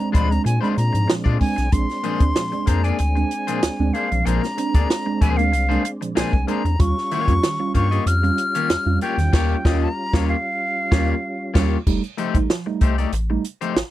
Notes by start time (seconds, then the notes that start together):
Already playing: G#3 C4 D4 A#5
0.00 G#3 C4 D4, closed hi-hat
0.12 D2 A#2 F3 G#3 D4 F4 C5 B5, kick, closed hi-hat
0.29 G#3 C4 D4 A#5, muted clean electric guitar stroke, closed hi-hat
0.44 A#2 G#5, muted clean electric guitar stroke, closed hi-hat
0.61 G#3 C4 D4 F4 C5 B5, closed hi-hat
0.76 A#2 A#5, muted clean electric guitar stroke, closed hi-hat
0.93 G#2 A#2 F3, muted clean electric guitar stroke, closed hi-hat
1.07 A#2 F3, muted clean electric guitar stroke, snare
1.24 A#2 G#3 D4 F4 D5, kick
1.39 G#3 C4 D4 G#5, muted clean electric guitar stroke, kick, open hi-hat
1.56 B1, muted clean electric guitar stroke, snare, closed hi-hat
1.72 A#1 G#3 C4 D4 C6, kick, closed hi-hat
1.90 snare, closed hi-hat
2.03 A#2 F3 A#3 D4 G#4 C5, closed hi-hat
2.20 D2 G#3 C4 D4, kick, closed hi-hat
2.35 A#2 F3, muted clean electric guitar stroke, snare, closed hi-hat
2.52 G#3 C4 D4, muted clean electric guitar stroke, closed hi-hat
2.66 F2 A#3 C4 D4 G#4 C5 A#5, kick, closed hi-hat
2.84 A#3 D4 G#4 D5 G#5, closed hi-hat
2.99 D2, muted clean electric guitar stroke, closed hi-hat
3.15 G#3 C4 D4, muted clean electric guitar stroke, closed hi-hat
3.31 closed hi-hat
3.47 A#2 F3 A#3 D4 G#4 C5, closed hi-hat
3.62 D2, muted clean electric guitar stroke, snare, closed hi-hat
3.79 D2 G#3 C4 D4
3.93 A#3 D4 G#4 C5 F5, closed hi-hat
4.11 B1 A#2 F3, muted clean electric guitar stroke, closed hi-hat
4.25 A#1 A#2 F3 A#3 D4 G#4 C5 A#5, closed hi-hat
4.42 muted clean electric guitar stroke, snare, closed hi-hat
4.57 C4 D4, muted clean electric guitar stroke, closed hi-hat
4.74 D2 A#3 D4 G#4 D5, kick, closed hi-hat
4.90 snare, closed hi-hat
5.06 G#3 C4 D4, muted clean electric guitar stroke
5.21 D2 A#2 F3 A#3 D4 G#4 C5 G#5, kick, closed hi-hat
5.37 G#3 C4 D4 F5, muted clean electric guitar stroke, closed hi-hat
5.52 C2, muted clean electric guitar stroke, closed hi-hat
5.69 G#3 A#3 C4 D4 G#4 C5, closed hi-hat
5.84 muted clean electric guitar stroke, closed hi-hat
6.01 A#2 F3, muted clean electric guitar stroke, closed hi-hat
6.15 C2 A#2 F3 A#3 D4 G#4 C5 G#5, snare, closed hi-hat
6.33 C2, muted clean electric guitar stroke, kick
6.47 G#3 A#3 C4 D4 G#4 C5 A#5, closed hi-hat
6.65 E2 C4 D4, closed hi-hat
6.79 D#2 G3 C#4 F4 C#6, kick, closed hi-hat
6.98 snare
7.11 D#3 A#3 F4 G4 C#5, closed hi-hat
7.28 F2 G3 C#4 F4, kick, closed hi-hat
7.43 D#3, muted clean electric guitar stroke, snare, closed hi-hat
7.59 G3 C#4 F4, muted clean electric guitar stroke
7.74 G2 A#3 C#4 F4 G4 C#5 C#6, kick, closed hi-hat
7.91 A#3 F4 G4 D#5, closed hi-hat
8.06 F2 F6, closed hi-hat
8.23 G3 C#4 F4, muted clean electric guitar stroke, closed hi-hat
8.38 closed hi-hat
8.55 D#3 A#3 F4 G4 C#5, closed hi-hat
8.70 F2, muted clean electric guitar stroke, snare, closed hi-hat
8.86 F2 G3 C#4 F4
9.01 A#3 F4 G4 C#5 G5, closed hi-hat
9.18 E2 D#3, muted clean electric guitar stroke, snare, closed hi-hat
9.33 D#2 A#3 F4 G4 C#5, kick, snare, crash
9.65 D#2 A#3 C#4 F4 G4 D#5, kick, snare
9.82 A#5
10.13 D#2 G3 A#3 C#4 F4 G4 C#5, kick, snare
10.29 F5
10.91 D#2 G3 A#3 C#4 F4 G4 C#5, kick, snare
11.54 D#2 G3 A#3 C#4 F4 G4 C#5, kick, snare, crash
11.87 F1 G3 A3 D#4, kick, crash
12.04 closed hi-hat
12.18 F3 A3 D#4 G4 C5, closed hi-hat
12.35 A1 G3 A3 D#4, kick, closed hi-hat
12.50 muted clean electric guitar stroke, snare
12.66 G3 A3 D#4, muted clean electric guitar stroke
12.81 C2 A3 D#4 G4 C5, kick, closed hi-hat
12.98 A3 D#4 G4 D5, closed hi-hat
13.13 A1, muted clean electric guitar stroke, closed hi-hat
13.30 G3 A3 D#4, muted clean electric guitar stroke
13.45 closed hi-hat
13.61 F3 A3 D#4 G4 C5, closed hi-hat
13.76 A1, muted clean electric guitar stroke, snare